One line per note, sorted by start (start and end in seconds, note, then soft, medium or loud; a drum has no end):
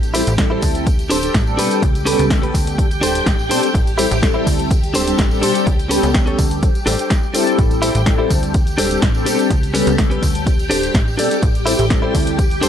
0.00 0.23 A1 loud
0.00 7.57 G4 medium
0.00 7.57 G5 medium
0.00 closed hi-hat soft
0.00 tambourine soft
0.14 0.20 G3 loud
0.14 0.21 C4 medium
0.14 0.32 E4 loud
0.14 0.21 E4 medium
0.14 0.33 G4 loud
0.14 0.21 A4 loud
0.14 0.33 A4 loud
0.14 0.33 C5 loud
0.14 open hi-hat loud
0.14 tambourine loud
0.27 0.59 A1 medium
0.27 closed hi-hat medium
0.27 tambourine soft
0.38 0.85 G3 loud
0.38 0.85 C4 medium
0.38 0.85 E4 medium
0.38 0.85 A4 loud
0.38 kick loud
0.38 snare loud
0.38 closed hi-hat medium
0.38 tambourine medium
0.50 0.62 E4 medium
0.50 0.62 G4 medium
0.50 0.63 A4 medium
0.50 0.63 C5 loud
0.62 1.12 D2 medium
0.62 kick medium
0.62 open hi-hat loud
0.62 tambourine medium
0.74 muted clean electric guitar stroke soft
0.74 closed hi-hat medium
0.74 tambourine soft
0.87 kick loud
0.87 closed hi-hat medium
0.87 tambourine medium
0.99 closed hi-hat soft
0.99 tambourine soft
1.10 1.30 D1 loud
1.10 1.16 G3 medium
1.10 1.17 C4 medium
1.10 1.34 D4 loud
1.10 1.17 D4 medium
1.10 1.34 G4 loud
1.10 1.35 A4 loud
1.10 1.17 A4 loud
1.10 1.35 C5 loud
1.10 open hi-hat loud
1.10 tambourine medium
1.23 1.44 G3 medium
1.23 1.44 C4 medium
1.23 1.44 D4 medium
1.23 1.44 A4 medium
1.23 closed hi-hat medium
1.23 tambourine soft
1.34 1.60 A1 loud
1.34 kick loud
1.34 snare loud
1.34 closed hi-hat medium
1.34 tambourine medium
1.47 1.81 G3 loud
1.47 1.81 C4 medium
1.47 1.81 D4 medium
1.47 1.81 A4 loud
1.47 tambourine soft
1.57 1.69 B2 medium
1.57 1.82 D4 medium
1.57 1.82 G4 medium
1.57 1.83 A4 medium
1.57 1.83 B4 medium
1.57 open hi-hat loud
1.57 tambourine loud
1.71 closed hi-hat medium
1.71 tambourine soft
1.82 2.15 C#2 loud
1.82 kick loud
1.82 closed hi-hat medium
1.82 tambourine medium
1.95 closed hi-hat soft
1.95 tambourine soft
2.05 2.28 G3 medium
2.05 2.28 B3 medium
2.05 2.24 C#4 loud
2.05 2.28 C#4 medium
2.05 2.25 G4 loud
2.05 2.25 A4 loud
2.05 2.28 A4 medium
2.05 2.25 B4 loud
2.05 open hi-hat loud
2.05 tambourine medium
2.19 2.51 C#2 medium
2.19 closed hi-hat medium
2.19 tambourine soft
2.30 2.76 G3 medium
2.30 2.76 B3 medium
2.30 2.76 C#4 medium
2.30 2.76 A4 medium
2.30 kick loud
2.30 snare loud
2.30 closed hi-hat medium
2.30 tambourine soft
2.42 2.54 C#4 medium
2.42 2.54 G4 medium
2.42 2.55 A4 medium
2.42 2.55 B4 loud
2.42 closed hi-hat soft
2.54 3.04 D2 medium
2.54 kick medium
2.54 open hi-hat loud
2.54 tambourine loud
2.66 muted clean electric guitar stroke soft
2.66 closed hi-hat medium
2.66 tambourine soft
2.78 2.84 G3 loud
2.78 2.85 C4 medium
2.78 2.85 D4 medium
2.78 2.85 A4 loud
2.78 kick loud
2.78 closed hi-hat medium
2.78 tambourine soft
2.91 closed hi-hat soft
2.91 tambourine soft
3.01 3.22 D1 medium
3.01 3.08 G3 medium
3.01 3.09 C4 medium
3.01 3.26 D4 loud
3.01 3.09 D4 medium
3.01 3.26 G4 loud
3.01 3.27 A4 loud
3.01 3.09 A4 medium
3.01 3.27 C5 loud
3.01 open hi-hat loud
3.01 tambourine loud
3.15 closed hi-hat medium
3.15 tambourine soft
3.26 3.52 A1 loud
3.26 kick loud
3.26 snare loud
3.26 closed hi-hat medium
3.26 tambourine medium
3.39 tambourine soft
3.49 3.60 B2 medium
3.49 3.60 G3 medium
3.49 3.60 C4 medium
3.49 3.74 D4 medium
3.49 3.60 D4 medium
3.49 3.74 G4 medium
3.49 3.75 A4 medium
3.49 3.60 A4 loud
3.49 3.75 C5 loud
3.49 open hi-hat loud
3.49 tambourine loud
3.63 3.69 G3 medium
3.63 3.69 C4 medium
3.63 3.69 D4 medium
3.63 3.69 A4 loud
3.63 closed hi-hat medium
3.63 tambourine soft
3.74 4.07 A1 medium
3.74 kick loud
3.74 closed hi-hat medium
3.74 tambourine medium
3.87 closed hi-hat soft
3.87 tambourine soft
3.98 4.04 G3 loud
3.98 4.05 C4 medium
3.98 4.16 E4 loud
3.98 4.05 E4 medium
3.98 4.17 G4 loud
3.98 4.17 A4 loud
3.98 4.05 A4 loud
3.98 4.17 C5 loud
3.98 open hi-hat loud
3.98 tambourine loud
4.11 4.43 A1 medium
4.11 closed hi-hat medium
4.11 tambourine soft
4.22 4.69 G3 loud
4.22 4.69 C4 medium
4.22 4.69 E4 medium
4.22 4.69 A4 loud
4.22 kick loud
4.22 snare loud
4.22 closed hi-hat medium
4.22 tambourine medium
4.34 4.46 E4 medium
4.34 4.46 G4 medium
4.34 4.47 A4 medium
4.34 4.47 C5 loud
4.47 4.96 D2 medium
4.47 kick medium
4.47 open hi-hat loud
4.47 tambourine loud
4.58 muted clean electric guitar stroke soft
4.58 closed hi-hat medium
4.58 tambourine soft
4.71 kick loud
4.71 closed hi-hat medium
4.71 tambourine medium
4.83 closed hi-hat soft
4.83 tambourine soft
4.94 5.14 D1 medium
4.94 5.01 G3 loud
4.94 5.01 C4 medium
4.94 5.18 D4 loud
4.94 5.01 D4 medium
4.94 5.18 G4 loud
4.94 5.19 A4 loud
4.94 5.01 A4 loud
4.94 5.19 C5 loud
4.94 open hi-hat loud
4.94 tambourine loud
5.07 5.28 G3 medium
5.07 5.28 C4 medium
5.07 5.28 D4 medium
5.07 5.28 A4 medium
5.07 closed hi-hat medium
5.07 tambourine soft
5.18 5.45 A1 medium
5.18 kick loud
5.18 snare loud
5.18 closed hi-hat medium
5.18 tambourine medium
5.31 5.65 G3 loud
5.31 5.65 C4 medium
5.31 5.65 D4 medium
5.31 5.65 A4 loud
5.31 tambourine soft
5.42 5.53 B2 medium
5.42 5.66 D4 medium
5.42 5.66 G4 medium
5.42 5.67 A4 medium
5.42 5.67 C5 medium
5.42 open hi-hat loud
5.42 tambourine medium
5.55 closed hi-hat medium
5.55 tambourine soft
5.67 5.99 C#2 loud
5.67 kick loud
5.67 closed hi-hat medium
5.67 tambourine medium
5.79 closed hi-hat soft
5.79 tambourine soft
5.89 6.12 G3 medium
5.89 6.12 B3 medium
5.89 6.08 C#4 loud
5.89 6.12 C#4 medium
5.89 6.09 G4 loud
5.89 6.09 A4 loud
5.89 6.12 A4 medium
5.89 6.09 B4 loud
5.89 open hi-hat loud
5.89 tambourine loud
6.03 6.35 C#2 medium
6.03 closed hi-hat medium
6.03 tambourine soft
6.14 6.60 G3 medium
6.14 6.60 B3 medium
6.14 6.60 C#4 medium
6.14 6.60 A4 medium
6.14 kick loud
6.14 snare loud
6.14 closed hi-hat medium
6.14 tambourine medium
6.26 6.38 C#4 medium
6.26 6.38 G4 medium
6.26 6.39 A4 medium
6.26 6.39 C#5 loud
6.26 closed hi-hat soft
6.39 6.71 D2 medium
6.39 kick medium
6.39 open hi-hat loud
6.39 tambourine loud
6.50 muted clean electric guitar stroke soft
6.50 closed hi-hat medium
6.50 tambourine soft
6.62 6.69 G3 loud
6.62 6.69 C4 medium
6.62 6.69 D4 medium
6.62 6.69 A4 loud
6.62 kick loud
6.62 closed hi-hat medium
6.62 tambourine medium
6.75 closed hi-hat soft
6.75 tambourine soft
6.86 6.97 A1 loud
6.86 6.93 G3 medium
6.86 6.93 C4 medium
6.86 7.10 D4 loud
6.86 6.93 D4 medium
6.86 7.11 G4 loud
6.86 7.11 A4 loud
6.86 6.93 A4 medium
6.86 7.11 C5 loud
6.86 open hi-hat loud
6.86 tambourine medium
6.99 closed hi-hat medium
6.99 tambourine soft
7.10 kick loud
7.10 snare loud
7.10 closed hi-hat medium
7.10 tambourine medium
7.23 tambourine soft
7.34 7.80 G3 loud
7.34 7.80 C4 loud
7.34 7.58 D4 medium
7.34 7.80 E4 medium
7.34 7.58 G4 medium
7.34 7.59 A4 medium
7.34 7.80 A4 loud
7.34 7.59 C5 loud
7.34 open hi-hat loud
7.34 tambourine loud
7.47 closed hi-hat soft
7.47 tambourine soft
7.58 7.91 A1 loud
7.58 12.69 G4 medium
7.58 12.69 G5 medium
7.58 kick loud
7.58 closed hi-hat medium
7.58 tambourine soft
7.71 closed hi-hat soft
7.71 tambourine soft
7.82 7.89 G3 loud
7.82 7.89 C4 medium
7.82 8.00 E4 loud
7.82 7.89 E4 medium
7.82 8.01 G4 loud
7.82 8.01 A4 loud
7.82 7.89 A4 loud
7.82 8.01 C5 loud
7.82 open hi-hat loud
7.82 tambourine medium
7.95 8.27 A1 medium
7.95 closed hi-hat medium
7.95 tambourine soft
8.06 8.53 G3 loud
8.06 8.53 C4 medium
8.06 8.53 E4 medium
8.06 8.53 A4 loud
8.06 kick loud
8.06 snare loud
8.06 closed hi-hat medium
8.06 tambourine medium
8.18 8.30 E4 medium
8.18 8.31 G4 medium
8.18 8.31 A4 medium
8.18 8.31 C5 loud
8.30 8.80 D2 medium
8.30 kick medium
8.30 open hi-hat loud
8.30 tambourine loud
8.42 muted clean electric guitar stroke soft
8.42 closed hi-hat medium
8.42 tambourine soft
8.54 kick loud
8.54 closed hi-hat medium
8.54 tambourine medium
8.67 closed hi-hat soft
8.67 tambourine soft
8.78 8.98 D1 loud
8.78 8.84 G3 medium
8.78 8.85 C4 medium
8.78 9.02 D4 loud
8.78 8.85 D4 medium
8.78 9.02 G4 loud
8.78 9.03 A4 loud
8.78 8.85 A4 loud
8.78 9.03 C5 loud
8.78 open hi-hat loud
8.78 tambourine loud
8.91 9.12 G3 medium
8.91 9.12 C4 medium
8.91 9.12 D4 medium
8.91 9.12 A4 medium
8.91 closed hi-hat medium
8.91 tambourine soft
9.02 9.28 A1 loud
9.02 kick loud
9.02 snare loud
9.02 closed hi-hat medium
9.02 tambourine medium
9.14 9.49 G3 loud
9.14 9.49 C4 medium
9.14 9.49 D4 medium
9.14 9.49 A4 loud
9.14 tambourine soft
9.25 9.36 B2 medium
9.25 9.50 D4 medium
9.25 9.50 G4 medium
9.25 9.51 A4 medium
9.25 9.51 C5 medium
9.25 open hi-hat loud
9.25 tambourine loud
9.39 closed hi-hat soft
9.39 tambourine soft
9.50 9.83 C#2 loud
9.50 kick loud
9.50 closed hi-hat medium
9.50 tambourine soft
9.63 closed hi-hat soft
9.63 tambourine soft
9.74 9.96 G3 medium
9.74 9.96 B3 medium
9.74 9.92 C#4 loud
9.74 9.96 C#4 medium
9.74 9.93 G4 loud
9.74 9.93 A4 loud
9.74 9.96 A4 medium
9.74 9.93 B4 loud
9.74 open hi-hat loud
9.74 tambourine medium
9.87 10.19 C#2 medium
9.87 closed hi-hat medium
9.87 tambourine soft
9.98 10.44 G3 medium
9.98 10.44 B3 medium
9.98 10.44 C#4 medium
9.98 10.44 A4 medium
9.98 kick loud
9.98 snare loud
9.98 closed hi-hat medium
9.98 tambourine medium
10.10 10.22 C#4 medium
10.10 10.22 G4 medium
10.10 10.23 A4 medium
10.10 10.23 B4 loud
10.10 closed hi-hat soft
10.22 10.72 D2 medium
10.22 kick medium
10.22 open hi-hat loud
10.22 tambourine loud
10.34 muted clean electric guitar stroke soft
10.34 closed hi-hat medium
10.34 tambourine soft
10.46 10.52 G3 loud
10.46 10.53 C4 medium
10.46 10.53 D4 medium
10.46 10.53 A4 loud
10.46 kick loud
10.46 closed hi-hat medium
10.46 tambourine medium
10.59 closed hi-hat soft
10.59 tambourine soft
10.70 10.90 D1 loud
10.70 10.76 G3 medium
10.70 10.77 C4 medium
10.70 10.94 D4 loud
10.70 10.77 D4 medium
10.70 10.94 G4 loud
10.70 10.95 A4 loud
10.70 10.77 A4 medium
10.70 10.95 C5 loud
10.70 open hi-hat loud
10.70 tambourine medium
10.83 closed hi-hat medium
10.83 tambourine soft
10.94 11.20 A1 loud
10.94 kick loud
10.94 snare loud
10.94 closed hi-hat medium
10.94 tambourine medium
11.08 tambourine soft
11.17 11.28 B2 medium
11.17 11.28 G3 medium
11.17 11.28 C4 medium
11.17 11.42 D4 medium
11.17 11.28 D4 medium
11.17 11.42 G4 medium
11.17 11.28 A4 loud
11.17 11.43 A4 medium
11.17 11.43 D5 loud
11.17 open hi-hat loud
11.17 tambourine medium
11.30 11.36 G3 medium
11.30 11.37 C4 medium
11.30 11.37 D4 medium
11.30 11.37 A4 loud
11.30 closed hi-hat medium
11.30 tambourine soft
11.42 11.75 A1 loud
11.42 kick loud
11.42 closed hi-hat medium
11.42 tambourine soft
11.55 closed hi-hat soft
11.55 tambourine soft
11.66 11.72 G3 loud
11.66 11.73 C4 medium
11.66 11.84 E4 loud
11.66 11.73 E4 medium
11.66 11.85 G4 loud
11.66 11.85 A4 loud
11.66 11.73 A4 loud
11.66 11.85 C5 loud
11.66 open hi-hat loud
11.66 tambourine loud
11.79 12.11 A1 medium
11.79 closed hi-hat medium
11.79 tambourine soft
11.90 12.37 G3 loud
11.90 12.37 C4 medium
11.90 12.37 E4 medium
11.90 12.37 A4 loud
11.90 kick loud
11.90 snare loud
11.90 closed hi-hat medium
11.90 tambourine soft
12.02 12.14 E4 medium
12.02 12.14 G4 medium
12.02 12.15 A4 medium
12.02 12.15 C5 loud
12.15 12.64 D2 medium
12.15 kick medium
12.15 open hi-hat loud
12.15 tambourine medium
12.26 muted clean electric guitar stroke soft
12.26 closed hi-hat medium
12.26 tambourine soft
12.39 kick loud
12.39 closed hi-hat medium
12.39 tambourine medium
12.50 closed hi-hat soft
12.50 tambourine soft
12.61 12.69 D1 loud
12.61 12.69 G3 loud
12.61 12.69 C4 medium
12.61 12.69 D4 loud
12.61 12.69 D4 medium
12.61 12.69 G4 loud
12.61 12.69 A4 loud
12.61 12.69 C5 loud
12.61 open hi-hat loud
12.61 tambourine medium